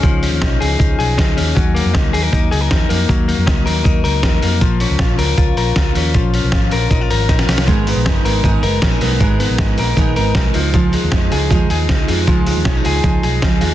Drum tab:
HH |x-o---o-x-o-x-o-|x-o---o-x-o-x-o-|x-o-x-o-x-o-x-o-|x-o---o-x-o-x-o-|
SD |----o-------o---|----o-------o---|----o-------o---|----o-------o---|
BD |o---o---o---o---|o---o---o---o---|o---o---o---o---|o---o---o---o---|

HH |x-o---o-x-o-x-o-|x-o-x-o-x-o-x-o-|x-o-x-o-x-o-x-o-|x-o-x-o-x-o-x-o-|
SD |----o-------oooo|----o-------o---|----o-------o---|----o-------o---|
BD |o---o---o---o---|o---o---o---o---|o---o---o---o---|o---o---o---o---|

HH |x-o-x-o-x-o-x-o-|
SD |----o-------o---|
BD |o---o---o---o---|